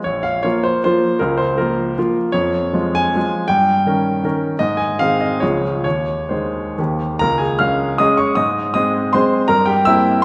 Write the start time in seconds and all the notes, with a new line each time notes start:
0.04 A#1 C#5
0.23 F5
0.43 F3 A#3 F4 C#5
0.64 C5
0.84 F3 A#3 F4 C5
1.19 C#2 A#4
1.38 C5
1.58 F3 A#3 F4 A#4
1.98 F3 A#3 F4
2.32 F2 C#5
2.73 F3 G#3 F4
2.95 G#5
3.16 F3 G#3 F4
3.48 G2 G5
3.86 D#3 C#4 A#4
4.24 D#3 C#4 A#4
4.59 G#2 D#5
4.77 G#5
4.99 D#3 C4 G#4 F5
5.21 D#5
5.40 C#2 F3 G#3 G#4 C#5
5.84 D#2 C#5
6.29 D#3 G#3 G#4 C5
6.78 D#2 D#3 A#3 G4
7.19 C#2 A#4 A#5
7.38 G#4 G#5
7.59 G#3 C#4 G#4 F5 F6
7.98 G#3 C#4 G#4 D#5 D#6
8.17 C#5 C#6
8.35 G#2 D#5 D#6
8.74 G#3 C4 G#4 D#5 D#6
9.13 G#3 C4 G#4 C5 C6
9.48 G2 A#4 A#5
9.65 G4 G5
9.85 A#3 C4 E4 E5 E6